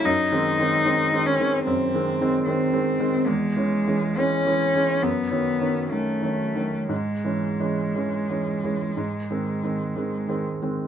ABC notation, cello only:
X:1
M:4/4
L:1/8
Q:1/4=67
K:G#phr
V:1 name="Cello"
D3 C ^B,2 B,2 | G,2 C2 B,2 A,2 | G,6- G, z |]